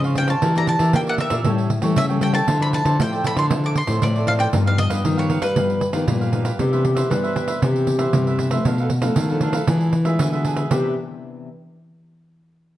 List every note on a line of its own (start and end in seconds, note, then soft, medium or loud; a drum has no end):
0.00 0.40 G#2 soft
0.00 0.35 C#3 medium
0.00 0.12 F3 medium
0.00 0.12 C4 medium
0.00 0.12 D#4 medium
0.00 pandeiro soft
0.05 0.16 C5 medium
0.05 0.16 C#5 medium
0.05 0.16 F5 medium
0.15 0.31 F3 soft
0.15 0.31 C4 medium
0.15 0.32 D#4 medium
0.15 0.28 F4 medium
0.15 0.29 C5 soft
0.15 0.28 C#5 medium
0.15 0.27 F5 medium
0.15 0.30 G5 medium
0.15 pandeiro medium
0.28 0.42 C5 medium
0.28 0.41 C#5 medium
0.28 0.41 F5 medium
0.28 0.54 A5 medium
0.28 pandeiro medium
0.42 0.91 E3 medium
0.42 0.75 E3 medium
0.42 0.50 A#3 medium
0.42 0.50 D4 medium
0.42 0.54 G4 soft
0.42 0.50 G4 medium
0.42 0.55 A#4 medium
0.42 0.55 D5 medium
0.42 0.55 E5 medium
0.42 pandeiro medium
0.55 0.90 A#3 medium
0.55 0.90 D4 medium
0.55 0.90 G4 medium
0.55 0.67 A#4 medium
0.55 0.67 D5 medium
0.55 0.67 E5 medium
0.55 0.68 A#5 medium
0.55 pandeiro soft
0.67 0.92 A5 medium
0.67 muted cavaquinho stroke soft
0.67 pandeiro medium
0.79 0.91 E3 medium
0.79 0.93 A#4 medium
0.79 0.92 D5 medium
0.79 0.93 E5 medium
0.79 pandeiro medium
0.93 1.42 E3 medium
0.93 1.41 A#3 medium
0.93 1.27 A#3 medium
0.93 1.41 D4 medium
0.93 1.06 G4 soft
0.93 1.41 G4 medium
0.93 1.06 A#4 soft
0.93 1.06 D5 soft
0.93 1.06 E5 medium
0.93 1.01 G5 medium
0.93 pandeiro medium
1.07 1.18 A#4 medium
1.07 1.19 D5 medium
1.07 1.19 E5 medium
1.07 1.14 F#5 medium
1.07 pandeiro soft
1.18 1.31 G4 medium
1.18 1.31 A#4 medium
1.18 1.29 D5 medium
1.18 1.30 E5 medium
1.18 1.96 E5 medium
1.18 pandeiro medium
1.30 1.43 A#2 medium
1.30 1.44 A#4 medium
1.30 1.43 D5 medium
1.30 1.44 E5 medium
1.30 pandeiro medium
1.44 1.94 A2 medium
1.44 1.78 A2 loud
1.44 1.69 G3 medium
1.44 1.69 A#3 medium
1.44 1.70 C#4 medium
1.44 1.69 G4 medium
1.44 1.69 A4 medium
1.44 1.69 C#5 medium
1.44 1.70 G5 medium
1.44 pandeiro medium
1.58 pandeiro soft
1.70 muted cavaquinho stroke soft
1.70 pandeiro medium
1.82 1.94 E3 medium
1.82 2.04 G3 medium
1.82 2.05 A#3 medium
1.82 2.05 C#4 medium
1.82 2.09 A4 medium
1.82 2.08 C#5 medium
1.82 2.07 G5 medium
1.82 pandeiro medium
1.96 2.41 C#3 medium
1.96 2.45 E3 medium
1.96 2.04 E5 medium
1.96 pandeiro medium
2.09 2.18 G3 medium
2.09 2.18 A#3 medium
2.09 2.18 C#4 medium
2.09 2.20 A4 medium
2.09 2.21 C#5 medium
2.09 2.21 G5 medium
2.09 pandeiro soft
2.20 2.36 G3 soft
2.20 2.37 A#3 medium
2.20 2.37 C#4 medium
2.20 2.33 G4 medium
2.20 2.33 A4 medium
2.20 2.33 C#5 medium
2.20 2.32 G5 medium
2.20 2.34 G5 medium
2.20 pandeiro medium
2.33 2.47 A4 medium
2.33 2.46 C#5 medium
2.33 2.46 G5 medium
2.33 2.61 A5 medium
2.33 pandeiro medium
2.46 2.96 D3 medium
2.46 2.81 D3 medium
2.46 2.56 F3 medium
2.46 2.56 C4 medium
2.46 2.56 E4 medium
2.46 2.59 F4 medium
2.46 2.60 A4 medium
2.46 2.60 C5 medium
2.46 2.60 D5 soft
2.46 pandeiro medium
2.59 2.94 F3 medium
2.59 2.95 C4 medium
2.59 2.95 E4 medium
2.59 2.72 A4 medium
2.59 2.72 C5 medium
2.59 2.73 D5 medium
2.59 2.67 B5 medium
2.59 pandeiro soft
2.73 3.00 A5 loud
2.73 muted cavaquinho stroke soft
2.73 pandeiro medium
2.84 2.97 D3 medium
2.84 2.98 A4 medium
2.84 2.98 C5 medium
2.84 2.97 D5 medium
2.84 pandeiro medium
2.98 3.47 A2 medium
2.98 3.32 A2 medium
2.98 3.46 F3 medium
2.98 3.46 C4 medium
2.98 3.46 E4 medium
2.98 3.11 F4 soft
2.98 3.12 A4 soft
2.98 3.12 C5 soft
2.98 3.11 D5 medium
2.98 3.24 G5 medium
2.98 pandeiro medium
3.12 3.24 A4 medium
3.12 3.24 C5 medium
3.12 3.24 D5 medium
3.12 pandeiro soft
3.24 3.36 F4 medium
3.24 3.37 A4 medium
3.24 3.36 C5 medium
3.24 3.35 D5 medium
3.24 3.38 B5 loud
3.24 pandeiro medium
3.36 3.81 D3 medium
3.36 3.50 A4 medium
3.36 3.49 C5 medium
3.36 3.49 D5 medium
3.36 3.45 C6 medium
3.36 pandeiro medium
3.50 3.99 D3 medium
3.50 3.74 F3 medium
3.50 3.75 C4 medium
3.50 3.75 E4 medium
3.50 3.74 F4 medium
3.50 3.75 A4 medium
3.50 3.75 C5 medium
3.50 3.75 D5 medium
3.50 pandeiro medium
3.64 3.77 D6 medium
3.64 pandeiro soft
3.75 4.03 C6 medium
3.75 muted cavaquinho stroke soft
3.75 pandeiro medium
3.87 3.99 A2 medium
3.87 4.23 F3 medium
3.87 4.23 C4 medium
3.87 4.23 E4 medium
3.87 4.14 A4 soft
3.87 4.14 C5 medium
3.87 4.13 D5 medium
3.87 pandeiro medium
4.02 4.51 A2 medium
4.02 4.46 A2 medium
4.02 4.29 D5 medium
4.02 pandeiro medium
4.15 4.27 A4 medium
4.15 4.27 C5 medium
4.15 4.27 D5 medium
4.15 pandeiro soft
4.27 4.51 F3 medium
4.27 4.51 C4 medium
4.27 4.51 E4 medium
4.27 4.39 F4 medium
4.27 4.40 A4 medium
4.27 4.39 C5 medium
4.27 4.38 D5 medium
4.27 4.33 F5 medium
4.27 pandeiro medium
4.39 4.53 A4 medium
4.39 4.52 C5 medium
4.39 4.52 D5 medium
4.39 4.47 G5 medium
4.39 pandeiro medium
4.53 5.03 G2 medium
4.53 4.87 G2 medium
4.53 4.62 F3 medium
4.53 4.63 B3 medium
4.53 4.65 D#4 soft
4.53 4.63 D#4 medium
4.53 4.65 G4 soft
4.53 4.66 B4 soft
4.53 4.65 F5 soft
4.53 pandeiro medium
4.66 5.01 F3 medium
4.66 5.01 B3 medium
4.66 5.02 D#4 medium
4.66 4.77 G4 medium
4.66 4.78 B4 medium
4.66 4.78 F5 medium
4.66 4.79 F5 medium
4.66 pandeiro soft
4.78 5.15 D#5 medium
4.78 muted cavaquinho stroke soft
4.78 pandeiro medium
4.90 5.02 G2 medium
4.90 5.04 G4 medium
4.90 5.03 B4 medium
4.90 5.03 F5 medium
4.90 pandeiro medium
5.04 5.54 G2 soft
5.04 5.38 D#3 medium
5.04 5.38 F3 medium
5.04 5.38 B3 soft
5.04 5.16 D#4 soft
5.04 5.39 D#4 medium
5.04 5.17 G4 soft
5.04 5.17 B4 soft
5.04 5.16 F5 medium
5.04 pandeiro medium
5.17 5.28 G4 medium
5.17 5.29 B4 medium
5.17 5.42 C#5 medium
5.17 5.29 F5 medium
5.17 pandeiro soft
5.29 5.42 D#4 medium
5.29 5.42 G4 medium
5.29 5.41 B4 medium
5.29 5.40 F5 medium
5.29 pandeiro medium
5.42 5.87 G3 medium
5.42 5.55 G4 medium
5.42 6.03 B4 medium
5.42 5.55 B4 medium
5.42 5.54 F5 medium
5.42 pandeiro medium
5.56 6.05 G2 medium
5.56 5.81 F3 medium
5.56 5.81 B3 soft
5.56 5.80 D#4 medium
5.56 5.81 D#4 medium
5.56 5.81 G4 medium
5.56 5.81 B4 soft
5.56 5.81 F5 medium
5.56 pandeiro medium
5.70 pandeiro soft
5.81 muted cavaquinho stroke soft
5.81 pandeiro medium
5.93 6.05 D#3 medium
5.93 6.28 F3 medium
5.93 6.29 B3 medium
5.93 6.29 D#4 medium
5.93 6.20 G4 soft
5.93 6.19 B4 medium
5.93 6.19 F5 medium
5.93 pandeiro medium
6.08 6.57 G2 soft
6.08 6.51 A#2 loud
6.08 pandeiro medium
6.21 6.32 G4 soft
6.21 6.32 B4 medium
6.21 6.33 F5 medium
6.21 pandeiro soft
6.32 6.50 F3 medium
6.32 6.50 B3 soft
6.32 6.45 D#4 medium
6.32 6.50 D#4 medium
6.32 6.45 G4 soft
6.32 6.45 B4 soft
6.32 6.43 F5 medium
6.32 pandeiro medium
6.45 6.58 G4 medium
6.45 6.58 B4 medium
6.45 6.57 F5 medium
6.45 pandeiro medium
6.59 7.08 C3 medium
6.59 7.03 C3 medium
6.59 6.67 E3 soft
6.59 6.67 B3 medium
6.59 6.68 D4 medium
6.59 7.12 G4 medium
6.59 6.71 G4 soft
6.59 6.72 B4 soft
6.59 6.72 C5 soft
6.59 6.71 E5 soft
6.59 pandeiro medium
6.73 7.07 E3 medium
6.73 7.07 B3 medium
6.73 7.08 D4 medium
6.73 6.84 B4 medium
6.73 6.84 C5 soft
6.73 6.84 E5 medium
6.73 pandeiro soft
6.84 muted cavaquinho stroke soft
6.84 pandeiro medium
6.95 7.09 B4 medium
6.95 7.10 C5 medium
6.95 7.09 E5 medium
6.95 pandeiro medium
7.10 7.60 G2 soft
7.10 7.58 E3 medium
7.10 7.54 G3 medium
7.10 7.58 B3 medium
7.10 7.58 D4 medium
7.10 7.22 G4 soft
7.10 7.62 B4 medium
7.10 7.23 B4 soft
7.10 7.23 C5 soft
7.10 7.22 E5 soft
7.10 pandeiro medium
7.23 7.36 B4 medium
7.23 7.35 C5 medium
7.23 7.35 E5 medium
7.23 pandeiro soft
7.35 7.48 G4 medium
7.35 7.48 B4 medium
7.35 7.48 C5 medium
7.35 7.47 E5 medium
7.35 pandeiro medium
7.48 7.61 B4 medium
7.48 7.62 C5 medium
7.48 7.61 E5 medium
7.48 pandeiro medium
7.62 8.11 C3 medium
7.62 8.06 C3 medium
7.62 7.97 E3 medium
7.62 7.97 B3 medium
7.62 7.97 D4 medium
7.62 7.86 G4 medium
7.62 8.62 G4 medium
7.62 7.87 B4 medium
7.62 7.87 C5 soft
7.62 7.87 E5 medium
7.62 pandeiro medium
7.76 pandeiro soft
7.87 muted cavaquinho stroke soft
7.87 pandeiro medium
7.99 8.35 E3 medium
7.99 8.35 B3 medium
7.99 8.35 D4 medium
7.99 8.25 B4 medium
7.99 8.26 C5 medium
7.99 8.25 E5 medium
7.99 pandeiro medium
8.13 8.63 G2 medium
8.13 8.57 C3 loud
8.13 pandeiro medium
8.27 8.39 B4 medium
8.27 8.38 C5 medium
8.27 8.39 E5 medium
8.27 pandeiro soft
8.39 8.47 E3 medium
8.39 8.48 B3 soft
8.39 8.48 D4 medium
8.39 8.51 G4 medium
8.39 8.51 B4 medium
8.39 8.52 C5 soft
8.39 8.50 E5 medium
8.39 pandeiro medium
8.51 8.74 F3 medium
8.51 8.74 A3 medium
8.51 8.74 D4 medium
8.51 8.64 B4 medium
8.51 8.65 C5 medium
8.51 8.64 E5 medium
8.51 pandeiro medium
8.65 9.09 B2 medium
8.65 9.14 B2 medium
8.65 8.77 D4 soft
8.65 8.78 A4 soft
8.65 8.78 B4 soft
8.65 8.78 F5 medium
8.65 pandeiro medium
8.78 8.92 B4 medium
8.78 8.91 F5 medium
8.78 pandeiro soft
8.82 8.91 A4 medium
8.90 muted cavaquinho stroke soft
8.90 pandeiro medium
9.02 9.25 F3 medium
9.02 9.25 A3 medium
9.02 9.25 D4 medium
9.02 9.16 A4 medium
9.02 9.16 B4 medium
9.02 9.15 F5 medium
9.02 pandeiro medium
9.16 9.66 B2 medium
9.16 9.61 D#3 medium
9.16 9.29 D4 soft
9.16 9.29 A4 soft
9.16 9.30 B4 soft
9.16 9.29 F5 soft
9.16 pandeiro medium
9.30 9.65 F3 medium
9.30 9.65 A3 medium
9.30 9.65 D4 medium
9.30 9.41 A4 medium
9.30 9.42 B4 medium
9.30 9.42 F5 medium
9.30 pandeiro soft
9.41 9.54 D4 medium
9.41 9.54 A4 medium
9.41 9.54 B4 medium
9.41 9.53 F5 medium
9.41 pandeiro medium
9.53 9.68 A4 medium
9.53 9.67 B4 medium
9.53 9.67 F5 medium
9.53 pandeiro medium
9.67 10.17 E3 medium
9.67 10.20 E3 medium
9.67 9.93 G#3 medium
9.67 9.93 D4 medium
9.67 9.93 F4 medium
9.67 9.93 G#4 medium
9.67 9.93 B4 medium
9.67 9.94 E5 medium
9.67 pandeiro medium
9.81 pandeiro soft
9.93 muted cavaquinho stroke soft
9.93 pandeiro medium
10.05 10.28 G#3 medium
10.05 10.28 D4 medium
10.05 10.28 F4 medium
10.05 10.32 G#4 medium
10.05 10.31 B4 medium
10.05 10.31 E5 medium
10.05 pandeiro medium
10.19 10.69 B2 medium
10.19 10.64 D3 loud
10.19 pandeiro medium
10.32 10.67 G#3 medium
10.32 10.68 D4 medium
10.32 10.68 F4 medium
10.32 10.44 G#4 medium
10.32 10.45 B4 medium
10.32 10.45 E5 medium
10.32 pandeiro soft
10.45 10.57 D4 medium
10.45 10.58 G#4 medium
10.45 10.56 B4 medium
10.45 10.55 E5 medium
10.45 pandeiro medium
10.56 10.71 G#4 medium
10.56 10.70 B4 medium
10.56 10.69 E5 medium
10.56 pandeiro medium
10.70 11.48 C3 medium
10.70 10.95 C3 medium
10.70 11.48 E3 medium
10.70 11.48 B3 medium
10.70 11.48 D4 medium
10.70 10.92 G4 medium
10.70 10.96 G4 medium
10.70 10.92 B4 medium
10.70 10.92 C5 medium
10.70 10.93 E5 medium
10.70 pandeiro loud